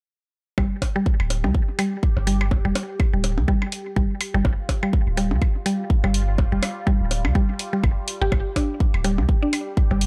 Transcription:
0.58 sub bass G1, synth texture G3 G4, synth arpeggio sound G3, kick, percussion blips
0.82 kick, open hi-hat, percussion blips
0.96 synth arpeggio sound G3
1.06 kick
1.20 sub bass D1, percussion blips
1.30 open hi-hat, percussion blips
1.44 sub bass D2, synth arpeggio sound G3, percussion blips
1.55 kick
1.79 synth arpeggio sound G3, open hi-hat, percussion blips
2.03 kick
2.17 sub bass G1, percussion blips
2.27 synth arpeggio sound G3, open hi-hat
2.41 percussion blips
2.51 kick, percussion blips
2.65 sub bass F1, synth arpeggio sound G3
2.75 open hi-hat, percussion blips
3.00 kick, percussion blips
3.13 sub bass D1, synth arpeggio sound G3
3.24 open hi-hat, percussion blips
3.38 sub bass D2, percussion blips
3.48 synth arpeggio sound G3, kick
3.62 percussion blips
3.72 open hi-hat
3.96 sub bass G1, synth arpeggio sound G3, kick
4.21 open hi-hat, percussion blips
4.34 sub bass G1, synth arpeggio sound G3
4.45 sub bass G1, synth texture F4, kick, percussion blips
4.69 kick, open hi-hat, percussion blips
4.83 synth arpeggio sound G3, percussion blips
4.93 kick
5.07 sub bass D1
5.17 synth arpeggio sound G3, open hi-hat, percussion blips
5.31 sub bass D2, percussion blips
5.42 kick, percussion blips
5.66 synth arpeggio sound G3, open hi-hat
5.90 kick
6.04 sub bass G1, synth arpeggio sound G3, percussion blips
6.14 open hi-hat
6.38 kick, percussion blips
6.52 sub bass F1, synth arpeggio sound G3
6.63 open hi-hat, percussion blips
6.87 synth arpeggio sound G3, kick
7.01 sub bass D1
7.11 open hi-hat, percussion blips
7.25 sub bass D2, percussion blips
7.35 synth arpeggio sound G3, kick
7.59 open hi-hat
7.73 synth arpeggio sound G3
7.84 sub bass G1, kick, percussion blips
8.08 open hi-hat
8.22 sub bass G1, synth arpeggio sound G4
8.32 sub bass G1, synth texture G4, kick, percussion blips
8.56 synth arpeggio sound D4, kick, open hi-hat, percussion blips
8.80 kick
8.94 sub bass D1, percussion blips
9.04 synth arpeggio sound G3, open hi-hat, percussion blips
9.18 sub bass D2, percussion blips
9.29 kick
9.43 synth arpeggio sound D4
9.53 open hi-hat, percussion blips
9.77 kick
9.91 sub bass G1, synth arpeggio sound G3, percussion blips
10.01 open hi-hat

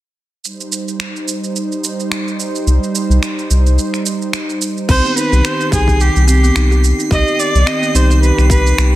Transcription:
0.45 analog synth pad G3 D#4 C5, shaker
0.61 shaker
0.72 shaker
0.88 shaker
1.00 finger snap, shaker
1.16 shaker
1.28 shaker
1.44 shaker
1.56 shaker
1.72 shaker
1.84 shaker
2.00 shaker
2.11 finger snap, shaker
2.28 shaker
2.40 shaker
2.55 shaker
2.67 analog synth bass C2, shaker
2.83 shaker
2.95 shaker
3.09 analog synth bass C2, shaker
3.23 finger snap, shaker
3.39 shaker
3.50 analog synth bass C2, shaker
3.67 shaker
3.79 shaker
3.94 finger snap, shaker
4.06 shaker
4.22 shaker
4.33 finger snap, shaker
4.50 shaker
4.62 shaker
4.77 shaker
4.89 analog synth bass C2, analog synth pad D#3 G4, kalimba C4, kamancheh C5, synth texture C7, kick, crash, shaker
5.05 kalimba B3, shaker
5.17 kalimba D#4, kamancheh B4, shaker
5.32 analog synth bass C2, kalimba G4, shaker
5.45 kamancheh C5, finger snap, shaker
5.60 kalimba D#4, shaker
5.72 analog synth bass C2, kalimba G4, kamancheh G#4, kick, shaker
5.88 kick, shaker
6.01 kamancheh G4, shaker
6.16 analog synth bass C2, shaker
6.28 kalimba C4, kamancheh G4, shaker
6.43 kalimba B3, shaker
6.56 analog synth bass C2, kalimba D#4, finger snap, shaker
6.71 kalimba G4, shaker
6.84 shaker
6.99 kalimba D#4, shaker
7.11 analog synth bass C2, kalimba G4, kamancheh D#5, kick, shaker
7.28 shaker
7.39 kamancheh D5, shaker
7.55 analog synth bass C2, shaker
7.66 kalimba C4, kamancheh D#5, finger snap, shaker
7.82 kalimba B3, shaker
7.94 analog synth bass C2, kalimba D#4, kamancheh C5, shaker
8.10 kalimba G4, shaker
8.23 kamancheh B4, shaker
8.38 analog synth bass C2, kalimba D#4, finger snap, shaker
8.50 kalimba G4, kamancheh B4, kick, shaker
8.67 shaker
8.78 analog synth bass C2, finger snap, shaker

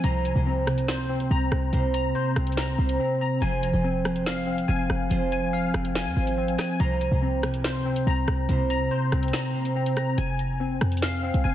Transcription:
Already playing: harp G#4
0.03 808-style bass C2, harp C3 A#3 E4 C5, tine electric piano A#5, closed hi-hat
0.25 closed hi-hat
0.35 808-style bass C2, harp C3 A#3 E4 C5
0.46 tine electric piano C4
0.66 harp C3 A#3 E4 A#4, cross-stick, closed hi-hat
0.78 closed hi-hat
0.88 tine electric piano C5, snare, closed hi-hat
0.99 808-style bass C#2
1.09 tine electric piano C4
1.20 closed hi-hat
1.31 808-style bass C2, tine electric piano A#5
1.52 808-style bass C2, cross-stick
1.73 808-style bass C2, harp C3 A#3 E4 C5, closed hi-hat
1.94 tine electric piano A#5, closed hi-hat
2.15 tine electric piano C5
2.36 808-style bass C2, tine electric piano C4, cross-stick, closed hi-hat
2.47 closed hi-hat
2.52 closed hi-hat
2.57 tine electric piano A#5, snare, closed hi-hat
2.63 closed hi-hat
2.77 808-style bass C2, harp C3 A#3 E4 C5
2.89 closed hi-hat
3.00 tine electric piano C4
3.21 tine electric piano A#5
3.40 808-style bass F1, harp F3 F4 G#4 C5, tine electric piano G#5, closed hi-hat
3.63 closed hi-hat
3.72 808-style bass F1, harp F3 F4 G#4 C5
3.84 tine electric piano C4
4.05 harp F3 F4 G#4 C5, cross-stick, closed hi-hat
4.16 closed hi-hat
4.26 tine electric piano F5, snare, closed hi-hat
4.47 tine electric piano C4
4.58 closed hi-hat
4.68 808-style bass F1, tine electric piano G#5
4.90 808-style bass F1, cross-stick
5.09 808-style bass F1, harp F3 F4 G#4 C5, closed hi-hat
5.32 tine electric piano G#5, closed hi-hat
5.53 tine electric piano F5
5.74 808-style bass F1, tine electric piano C4, cross-stick, closed hi-hat
5.85 closed hi-hat
5.95 tine electric piano G#5, snare, closed hi-hat
6.06 808-style bass F2
6.15 808-style bass G#1, harp F3 F4 G#4 C5
6.27 closed hi-hat
6.38 tine electric piano C4
6.48 closed hi-hat
6.58 tine electric piano G#5, cross-stick, snare, closed hi-hat
6.79 808-style bass C2, harp C3 A#3 E4 C5, tine electric piano A#5, closed hi-hat
7.01 closed hi-hat
7.11 808-style bass C2, harp C3 A#3 E4 C5
7.22 tine electric piano C4
7.42 harp C3 A#3 E4 A#4, cross-stick, closed hi-hat
7.54 closed hi-hat
7.64 tine electric piano C5, snare, closed hi-hat
7.75 808-style bass C#2
7.85 tine electric piano C4
7.96 closed hi-hat
8.07 808-style bass C2, tine electric piano A#5
8.28 808-style bass C2, cross-stick
8.49 808-style bass C2, harp C3 A#3 E4 C5, closed hi-hat
8.70 tine electric piano A#5, closed hi-hat
8.91 tine electric piano C5
9.12 808-style bass C2, tine electric piano C4, cross-stick, closed hi-hat
9.23 closed hi-hat
9.28 closed hi-hat
9.33 tine electric piano A#5, snare, closed hi-hat
9.39 closed hi-hat
9.54 harp C3 A#3 E4 C5
9.65 closed hi-hat
9.76 tine electric piano C4
9.86 closed hi-hat
9.97 tine electric piano A#5, cross-stick, closed hi-hat, open hi-hat
10.18 808-style bass F1, tine electric piano G#5, closed hi-hat
10.39 closed hi-hat
10.60 tine electric piano C4
10.81 808-style bass F2, cross-stick, closed hi-hat
10.92 closed hi-hat
10.97 closed hi-hat
11.02 tine electric piano F5, snare
11.08 closed hi-hat
11.23 tine electric piano C4
11.34 808-style bass C2, closed hi-hat
11.44 808-style bass F1, tine electric piano G#5

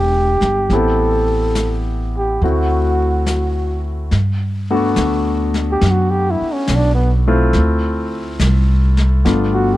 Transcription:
Already playing: upright bass E1, grand piano G#3 C4 D4 G5, flugelhorn G4
0.41 upright bass G1, snare
0.70 upright bass A1, grand piano B3 C4 E4, brush sweep, snare
0.74 grand piano G4, flugelhorn A4
1.55 snare, hi-hat pedal
2.18 flugelhorn G4
2.41 upright bass D2, grand piano A3 C4 E4 F#4, flugelhorn F#4, brush sweep
3.26 snare, hi-hat pedal
4.11 upright bass G2, brush sweep, snare
4.70 grand piano A3 B3 D4 F#4
4.96 upright bass D2, snare, hi-hat pedal
5.54 snare
5.72 flugelhorn G4
5.81 upright bass F#2, brush sweep, snare
5.91 flugelhorn F#4
6.10 flugelhorn G4
6.31 flugelhorn E4
6.41 muted upright bass stroke
6.54 flugelhorn C#4
6.68 upright bass B1, snare, hi-hat pedal
6.76 flugelhorn D4
6.95 flugelhorn B3
7.28 grand piano A3 C4 E4 F4
7.53 upright bass D2, brush sweep, snare
8.39 upright bass C2, snare, hi-hat pedal
8.97 snare
9.25 upright bass G1, grand piano A3 B3 D4 F4, brush sweep, snare
9.54 flugelhorn F#4

